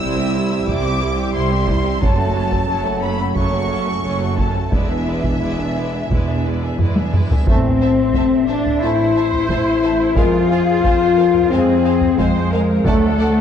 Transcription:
Already playing: C3 G3 C4 E4 E6
0.01 C2 G3 E4 C5
0.17 C4 G4 E5
0.34 G3 E4 C5
0.51 C4 G4 E5
0.68 C2 G3 E4 C5 D6, taiko
0.83 C4 G4 E5
1.01 G3 E4 C5
1.17 C4 G4 E5
1.34 C2 G3 E4 C5 C6
1.51 C4 G4 E5
1.67 G3 E4 C5, taiko
1.84 C4 G4 E5
2.01 F#1 F#2 C#3 F#3 A3 C#4 A4 C#5 A5, taiko
2.16 A3 F#4 A4
2.33 F#3 C#4 A4 C#5
2.50 A3 F#4 A4, taiko
2.66 F#1 F#2 F#3 C#4 A4 C#5
2.84 A3 F#4 A4
3.01 F#3 C#4 A4 C#5 B5
3.18 A3 F#4 A4
3.35 F#1 F#2 F#3 C#4 A4 C#5 C#6, taiko
3.52 A3 F#4 A4
3.69 F#3 C#4 A4 C#5
3.85 A3 F#4 A4
4.02 F#1 F#2 F#3 C#4 A4 C#5
4.20 A3 F#4 A4
4.37 F#3 C#4 A4 C#5 A5, taiko
4.55 A3 F#4 A4
4.71 E1 E2 B2 E3 G#3 D4 E4 B4 D5 E5, taiko, reverse cymbal
4.88 B3 D4 G#4 E5
5.06 G#3 E4 B4 D5
5.23 B3 D4 G#4 E5, taiko
5.41 E1 E2 G#3 E4 B4 D5
5.59 B3 D4 G#4 E5
5.75 G#3 E4 B4 D5
5.92 B3 D4 G#4 E5
6.10 E1 E2 G#3 E4 B4 D5, taiko
6.28 B3 D4 G#4 E5
6.45 G#3 E4 B4 D5
6.63 B3 D4 G#4 E5
6.78 E1 E2 G#3 E4 B4 D5, taiko low-mid
6.96 B3 D4 G#4 E5, taiko high
7.13 G#3 E4 B4 D5, taiko low-mid
7.31 B3 D4 G#4 E5, taiko low
7.47 A1 E3 A3 C4 A4 C5 E5 A5, taiko, sub drop
7.81 C5 E5 A5
8.15 A1 C5 E5 A5, taiko
8.48 D4 C5 E5 A5
8.66 taiko low
8.82 A1 E3 A3 E4 C5 E5 A5
9.16 C5 E5 A5
9.32 taiko low
9.49 A1 E4 C5 E5 A5, taiko
9.83 C5 E5 A5
10.16 F2 F3 G#3 F4 G#4 A#4 C5 F5 G#5, taiko
10.50 G#4 C5 F5 G#5
10.84 F2 C5 F5 G#5, taiko
11.17 A#4 C5 F5 G#5
11.34 taiko low
11.50 F2 F3 G#3 C4 G#4 C5 F5 G#5
11.85 C5 F5 G#5
12.01 taiko low
12.18 F2 G#3 C5 F5 G#5, taiko
12.52 A#4 C5 F5 G#5
12.85 D2 F#3 A3 D4 A4 D5 F#5 A5, taiko
13.19 D5 F#5 A5

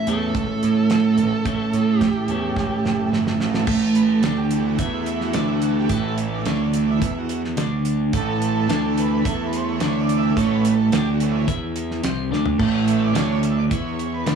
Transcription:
Already playing: C#3 E3 A3 A4 E5
0.07 E2 A2 E3 A3 C#4 E4 A4, closed hi-hat
0.35 C#2, kick, closed hi-hat
0.63 A2, closed hi-hat
0.90 snare, closed hi-hat
1.18 A1, closed hi-hat
1.45 A1 A2 E3 A3 C#4 E4, kick, closed hi-hat
1.73 A2, closed hi-hat
1.99 G4, kick, snare, closed hi-hat
2.28 E2 A2 E3 A3 C#4 E4, closed hi-hat
2.56 C#2, kick, snare
2.85 F#1, snare
3.12 G1, snare
3.27 snare
3.40 A1, snare
3.54 snare
3.67 A1 A2 A3, kick, crash
3.95 B4, closed hi-hat
4.07 A4
4.23 D2 D3 D4, snare, closed hi-hat
4.37 G4
4.49 E3 A3, closed hi-hat
4.66 F#4
4.79 E2 E3 E4, kick, closed hi-hat
4.94 E4
5.06 closed hi-hat
5.21 F#4, snare
5.33 D2 D3 D4 E4, snare, closed hi-hat
5.51 F#4
5.62 closed hi-hat
5.79 G4
5.89 A1 A2 A3 F#4, kick, closed hi-hat
6.08 E4
6.18 closed hi-hat
6.34 D4
6.46 D2 D3 C#4 D4, snare, closed hi-hat
6.62 D4
6.74 E3 A3, closed hi-hat
6.91 E4
7.01 E2 E3 E4, kick, closed hi-hat
7.18 F#4
7.29 closed hi-hat
7.45 snare
7.57 D2 D3 D4, snare, closed hi-hat
7.85 closed hi-hat
8.13 A1 A2 E3 A3 A4, kick, closed hi-hat
8.42 closed hi-hat
8.69 D2 D3 D4, snare, closed hi-hat
8.98 B4, closed hi-hat
9.25 E2 E3 E4 A4, kick, closed hi-hat
9.47 B4
9.53 C5, closed hi-hat
9.64 C#5
9.80 D2 D3 D4, snare, closed hi-hat
10.01 D5
10.09 closed hi-hat
10.19 E5
10.36 A1 A2 E3 A3 C#4 C#5, kick, closed hi-hat
10.55 B4
10.65 closed hi-hat
10.74 A4
10.92 D2 D3 D4 G4, snare, closed hi-hat
11.13 F#4
11.20 E3 A3 C#4, closed hi-hat
11.31 E4
11.47 E2 E3 E4, kick, closed hi-hat
11.76 closed hi-hat
11.91 snare
12.03 C2 C3 C4, snare, closed hi-hat
12.31 D2 D3 D4, snare
12.46 floor tom
12.58 A1 A2 E3 A3 C#4, kick, crash
12.88 E5, closed hi-hat
13.03 D5
13.14 D2 D3 D4 C#5, snare, closed hi-hat
13.43 E5, closed hi-hat
13.58 D5
13.70 E2 E3 E4 C#5, kick, closed hi-hat
13.99 closed hi-hat
14.05 C#5
14.14 B4
14.26 D2 D3 D4, snare, closed hi-hat

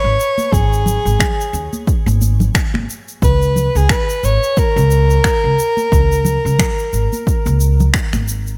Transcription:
Already playing: C#5
0.04 G#1
0.20 shaker
0.38 high conga, shaker
0.52 G#1 G#4, kick, shaker
0.73 shaker
0.86 low conga, shaker
1.05 G#1, shaker
1.19 finger snap, kick, low conga, shaker
1.41 shaker
1.53 D#2, shaker
1.73 high conga, shaker
1.87 kick, shaker
2.06 G#1, high conga, shaker
2.21 high conga, shaker
2.40 low conga, shaker
2.55 finger snap, kick, shaker
2.74 G#1, finger snap, high conga
2.90 shaker
3.08 shaker
3.22 C#2 B4, kick, shaker
3.42 shaker
3.56 low conga, shaker
3.75 C#2 G#4, shaker
3.89 B4, finger snap, kick, shaker
4.10 shaker
4.23 G#1 C#5, shaker
4.43 shaker
4.57 A#4, kick, shaker
4.76 C#2, shaker
4.91 shaker
5.10 shaker
5.24 finger snap, kick, shaker
5.44 C#2
5.59 shaker
5.77 high conga, shaker
5.92 C#2, kick, shaker
6.12 shaker
6.25 low conga, shaker
6.45 C#2, shaker
6.59 finger snap, kick, low conga, shaker
6.79 shaker
6.93 G#1, shaker
7.13 high conga, shaker
7.27 kick, shaker
7.46 C#2, high conga, shaker
7.60 shaker
7.80 low conga, shaker
7.94 finger snap, kick, shaker
8.13 G#1, finger snap, high conga, shaker
8.28 shaker
8.47 shaker

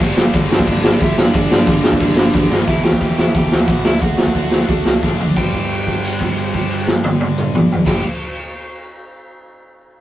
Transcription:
Already playing: D4
0.00 G1 G2 D3, kick
0.04 G3
0.16 G1 G2 D3 G3, snare
0.21 G2
0.33 G1 G2 D3 G3, kick, ride
0.50 G1 G2 D3 G3 D4, snare
0.54 D5
0.59 kick
0.67 G1 G2 D3 G3, kick, ride
0.83 G1 G2 D3 G3, snare
1.00 G1 G2 D3 G3 E4 E5, kick, ride
1.18 G1 G2 D3 G3 D4 D5, snare
1.34 G1 G2 D3 G3, kick, ride
1.51 G1 G2 D3 G3, snare
1.67 G1 G2 D3 G3, kick, ride
1.84 G1 G2 D3 G3, snare
1.92 kick
2.00 G1 G2 D3 G3, kick, ride
2.16 G1 G2 D3 G3, snare
2.33 G1 G2 D3 G3, kick, ride
2.51 G1 G2 D3 G3, snare
2.68 E1 E2 B2 E3 E4 E5, kick, open hi-hat
2.84 E1 G4 G5, snare
2.93 kick
3.00 E1 E2 B2 E3, kick, open hi-hat
3.17 E2 B2 E3 E4 E5, snare
3.34 E1 E2 B2 E3 G4 G5, kick, open hi-hat
3.52 D2, snare
3.60 F#4 F#5
3.67 A1 E2 B2 E3, kick, open hi-hat
3.84 D2 D3 A3 D4 E4 E5, snare
4.01 D2 D3 A3 D4 F#4 F#5, kick, open hi-hat
4.17 D2, snare
4.27 kick
4.34 D2 D3 A3 D4, kick, open hi-hat
4.51 D3 A3 D4, snare
4.68 D2 D3 A3 D4, kick, open hi-hat
4.85 C2, snare
5.03 G2 D3 A3 D4, kick, snare
5.18 F#1 D3 A3 D4, floor tom
5.35 G1 G2 D3 G3 G5, kick, crash
5.53 kick, crash
5.70 crash
5.87 kick, crash
6.04 crash
6.21 kick, crash
6.37 crash
6.53 kick, crash
6.70 crash
6.87 snare
7.04 high tom
7.21 high tom
7.38 mid tom
7.55 mid tom
7.72 floor tom
7.86 G1 G2 D3 G3 G5, kick, snare, crash

